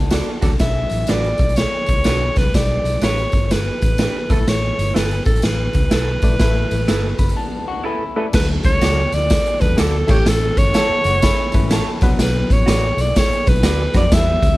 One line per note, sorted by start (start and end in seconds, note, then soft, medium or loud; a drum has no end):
0.00 0.19 C#2 medium
0.00 0.57 B3 medium
0.00 0.57 D4 medium
0.11 0.28 F#4 medium
0.11 0.29 A4 medium
0.11 0.29 D5 medium
0.11 snare loud
0.11 closed hi-hat medium
0.11 tambourine medium
0.41 0.49 D2 medium
0.41 0.54 F#3 medium
0.41 0.54 D4 medium
0.41 0.50 F#4 medium
0.41 0.50 A4 medium
0.41 0.54 A4 medium
0.41 0.50 D5 medium
0.41 kick loud
0.41 snare soft
0.41 closed hi-hat medium
0.41 tambourine medium
0.52 0.58 C2 medium
0.59 0.83 B1 loud
0.59 1.25 F#3 medium
0.59 0.68 C#4 medium
0.59 1.25 B4 medium
0.59 1.11 E5 loud
0.59 kick medium
0.59 snare loud
0.59 closed hi-hat medium
0.59 tambourine medium
0.67 1.28 D4 medium
0.89 1.04 A1 medium
0.89 closed hi-hat medium
0.89 tambourine medium
1.07 1.32 A1 medium
1.07 1.25 D4 medium
1.07 1.26 F#4 medium
1.07 1.26 B4 loud
1.07 1.59 D5 loud
1.07 snare loud
1.07 closed hi-hat medium
1.07 tambourine medium
1.24 closed hi-hat soft
1.38 1.64 B1 medium
1.38 kick loud
1.38 closed hi-hat medium
1.38 tambourine medium
1.49 closed hi-hat medium
1.56 2.39 C#5 loud
1.56 snare loud
1.56 closed hi-hat medium
1.56 tambourine medium
1.86 1.95 B1 medium
1.86 kick medium
1.86 closed hi-hat medium
1.86 tambourine medium
1.97 2.03 C#2 medium
2.04 2.28 B1 medium
2.04 2.22 D4 medium
2.04 2.22 F#4 medium
2.04 2.23 B4 loud
2.04 snare loud
2.04 closed hi-hat medium
2.04 tambourine loud
2.36 2.50 C2 medium
2.36 2.48 F#3 medium
2.36 2.48 D4 medium
2.36 2.48 B4 medium
2.36 2.56 B4 loud
2.36 kick medium
2.36 snare soft
2.36 closed hi-hat medium
2.36 tambourine medium
2.54 2.77 B1 loud
2.54 3.19 G3 medium
2.54 3.19 D4 medium
2.54 3.19 B4 medium
2.54 3.03 D5 loud
2.54 kick medium
2.54 snare loud
2.54 closed hi-hat medium
2.54 tambourine medium
2.84 2.97 B1 medium
2.84 closed hi-hat medium
2.84 tambourine medium
3.01 3.25 A1 medium
3.01 3.19 D4 medium
3.01 3.20 G4 medium
3.01 3.20 B4 medium
3.01 3.46 C#5 loud
3.01 snare loud
3.01 closed hi-hat medium
3.01 tambourine medium
3.18 closed hi-hat medium
3.32 3.69 G1 medium
3.32 kick loud
3.32 closed hi-hat medium
3.32 tambourine medium
3.46 3.53 C#5 medium
3.51 4.34 B4 medium
3.51 snare loud
3.51 closed hi-hat medium
3.51 tambourine medium
3.82 4.06 A1 medium
3.82 kick medium
3.82 closed hi-hat medium
3.82 tambourine medium
3.98 4.16 D4 medium
3.98 4.16 G4 medium
3.98 4.17 B4 medium
3.98 snare loud
3.98 closed hi-hat medium
3.98 tambourine loud
4.30 4.37 A1 loud
4.30 5.02 A3 medium
4.30 4.37 E4 medium
4.30 5.02 E4 medium
4.30 4.38 A4 medium
4.30 4.50 A4 medium
4.30 5.02 B4 medium
4.30 4.38 B4 medium
4.30 kick loud
4.30 closed hi-hat medium
4.30 tambourine medium
4.38 4.45 A#1 medium
4.47 4.70 A1 medium
4.47 4.97 C#5 medium
4.47 snare loud
4.47 closed hi-hat medium
4.47 tambourine medium
4.79 4.91 G1 medium
4.79 closed hi-hat medium
4.79 tambourine medium
4.94 5.18 G1 loud
4.94 5.12 E4 medium
4.94 5.12 A4 medium
4.94 5.25 B4 medium
4.94 5.13 B4 medium
4.94 snare loud
4.94 closed hi-hat medium
4.94 tambourine medium
5.11 closed hi-hat medium
5.25 5.39 A1 medium
5.25 5.45 A4 medium
5.25 kick loud
5.25 closed hi-hat medium
5.25 tambourine medium
5.36 closed hi-hat medium
5.42 5.67 A1 medium
5.42 7.85 B4 loud
5.42 snare loud
5.42 closed hi-hat medium
5.42 tambourine medium
5.73 5.88 C#2 medium
5.73 kick medium
5.73 closed hi-hat medium
5.73 tambourine medium
5.91 6.15 B1 loud
5.91 6.09 E4 medium
5.91 6.09 A4 medium
5.91 6.09 B4 medium
5.91 snare loud
5.91 closed hi-hat medium
5.91 tambourine loud
6.22 6.36 A#1 medium
6.22 6.34 A3 medium
6.22 6.34 E4 medium
6.22 6.35 D5 loud
6.22 kick medium
6.22 closed hi-hat medium
6.22 tambourine medium
6.39 6.63 A1 loud
6.39 7.05 A3 medium
6.39 7.05 E4 medium
6.39 7.05 B4 loud
6.39 kick loud
6.39 snare loud
6.39 closed hi-hat medium
6.39 tambourine loud
6.71 6.85 A1 medium
6.71 closed hi-hat medium
6.71 tambourine medium
6.88 7.12 G1 medium
6.88 7.05 E4 medium
6.88 7.06 A4 medium
6.88 7.06 B4 medium
6.88 snare loud
6.88 closed hi-hat medium
6.88 tambourine medium
7.19 7.32 F#1 medium
7.19 7.36 B5 medium
7.19 kick loud
7.19 closed hi-hat medium
7.19 tambourine medium
7.29 closed hi-hat medium
7.36 7.66 B3 medium
7.36 7.66 D4 medium
7.36 7.66 A5 medium
7.68 7.85 D4 medium
7.68 7.85 F#4 medium
7.68 7.84 F#5 medium
7.84 8.32 C#4 medium
7.84 8.02 E4 medium
7.84 8.31 E4 medium
7.84 8.02 A4 medium
7.84 8.02 B4 medium
7.84 8.15 E5 medium
8.16 8.27 A3 loud
8.16 8.24 E4 medium
8.16 8.27 E4 medium
8.16 8.24 A4 medium
8.16 8.27 B4 loud
8.16 8.25 B4 medium
8.16 8.33 D5 medium
8.33 8.57 D2 loud
8.33 8.41 F3 medium
8.33 8.98 A3 medium
8.33 8.98 D4 medium
8.33 8.98 A4 medium
8.33 8.49 B4 loud
8.33 kick loud
8.33 snare loud
8.33 crash medium
8.33 tambourine medium
8.39 9.01 F#3 medium
8.63 8.78 C#2 loud
8.63 9.16 C#5 loud
8.63 kick medium
8.63 closed hi-hat medium
8.63 tambourine medium
8.81 9.04 C#2 medium
8.81 8.99 F#4 medium
8.81 8.99 A4 medium
8.81 9.00 D5 loud
8.81 snare loud
8.81 closed hi-hat medium
8.81 tambourine medium
9.12 9.37 D2 medium
9.12 9.62 D5 loud
9.12 closed hi-hat medium
9.12 tambourine medium
9.30 kick loud
9.30 snare loud
9.30 closed hi-hat loud
9.30 tambourine loud
9.46 closed hi-hat medium
9.60 9.68 D2 medium
9.60 9.86 F#3 medium
9.60 9.86 A3 medium
9.60 9.86 D4 medium
9.60 9.86 A4 medium
9.60 9.77 B4 loud
9.60 kick medium
9.60 closed hi-hat medium
9.60 tambourine medium
9.70 9.76 E2 medium
9.76 10.02 D2 medium
9.76 9.95 F#4 medium
9.76 9.80 G#4 medium
9.76 10.12 A4 loud
9.76 9.96 A4 medium
9.76 9.96 D5 loud
9.76 snare loud
9.76 closed hi-hat medium
9.76 tambourine loud
10.07 10.22 A1 loud
10.07 10.80 E3 medium
10.07 10.80 A3 medium
10.07 10.80 C#4 medium
10.07 10.16 E4 medium
10.07 10.30 G4 loud
10.07 10.80 A4 medium
10.07 10.17 A4 medium
10.07 10.17 C#5 medium
10.07 kick loud
10.07 tambourine medium
10.07 crash medium
10.25 10.49 A1 loud
10.25 10.59 A4 loud
10.25 snare loud
10.25 closed hi-hat medium
10.25 tambourine loud
10.57 10.70 G1 medium
10.57 12.02 C#5 loud
10.57 kick loud
10.57 closed hi-hat medium
10.57 tambourine medium
10.74 10.91 E4 medium
10.74 11.04 F#4 medium
10.74 10.92 A4 medium
10.74 11.04 A4 medium
10.74 10.92 C#5 loud
10.74 snare loud
10.74 closed hi-hat medium
10.74 tambourine medium
10.90 muted fingered electric bass stroke soft
11.04 11.29 F#1 medium
11.04 11.22 F#4 medium
11.04 closed hi-hat medium
11.04 tambourine medium
11.22 11.98 C#4 medium
11.22 11.98 E4 medium
11.22 kick medium
11.22 snare loud
11.22 closed hi-hat loud
11.22 tambourine loud
11.52 11.60 G1 loud
11.52 11.80 E3 medium
11.52 11.79 A3 medium
11.52 11.79 C#4 medium
11.52 11.80 B4 medium
11.52 11.70 B5 medium
11.52 kick medium
11.52 closed hi-hat medium
11.52 tambourine medium
11.61 11.79 A1 medium
11.71 11.88 E4 medium
11.71 11.88 A4 medium
11.71 11.89 C#5 loud
11.71 12.01 A5 medium
11.71 snare loud
11.71 closed hi-hat loud
11.71 tambourine loud
12.01 12.09 B1 loud
12.01 12.74 F#3 loud
12.01 12.74 B3 loud
12.01 12.74 D4 medium
12.01 12.74 B4 loud
12.01 12.19 F#5 medium
12.01 kick loud
12.01 snare soft
12.01 closed hi-hat medium
12.01 tambourine medium
12.09 12.16 C2 loud
12.18 12.42 B1 loud
12.18 12.54 B4 medium
12.18 snare loud
12.18 closed hi-hat medium
12.18 tambourine medium
12.50 12.63 A1 medium
12.50 13.02 C#5 medium
12.50 kick medium
12.50 closed hi-hat medium
12.50 tambourine medium
12.66 12.90 A1 loud
12.66 12.84 F#4 loud
12.66 12.84 B4 medium
12.66 12.85 D5 loud
12.66 snare loud
12.66 closed hi-hat loud
12.66 tambourine medium
12.97 13.10 B1 medium
12.97 13.19 D5 loud
12.97 closed hi-hat medium
12.97 tambourine medium
13.16 13.50 C#5 loud
13.16 kick medium
13.16 snare loud
13.16 closed hi-hat medium
13.16 tambourine medium
13.30 muted fingered electric bass stroke medium
13.30 closed hi-hat medium
13.47 13.60 B1 medium
13.47 13.72 F#3 medium
13.47 13.72 B3 medium
13.47 13.72 D4 medium
13.47 13.72 B4 medium
13.47 13.98 B4 medium
13.47 kick medium
13.47 closed hi-hat medium
13.47 tambourine medium
13.56 closed hi-hat medium
13.63 13.86 D2 medium
13.63 13.80 F#4 medium
13.63 13.81 B4 medium
13.63 13.82 D5 loud
13.63 snare loud
13.63 closed hi-hat loud
13.63 tambourine loud
13.94 14.07 F2 medium
13.94 14.06 F#3 medium
13.94 14.06 B3 medium
13.94 14.06 D4 medium
13.94 14.02 F#4 medium
13.94 14.06 B4 medium
13.94 14.03 B4 medium
13.94 14.15 D5 loud
13.94 14.03 D5 medium
13.94 kick loud
13.94 snare soft
13.94 closed hi-hat medium
13.94 tambourine medium
14.12 14.35 E2 loud
14.12 14.57 G3 medium
14.12 14.57 B3 medium
14.12 14.57 E4 medium
14.12 14.20 A4 medium
14.12 14.57 E5 loud
14.12 kick loud
14.12 snare loud
14.12 closed hi-hat medium
14.12 tambourine loud
14.19 14.57 B4 medium
14.43 14.56 D2 medium
14.43 kick medium
14.43 closed hi-hat medium
14.43 tambourine medium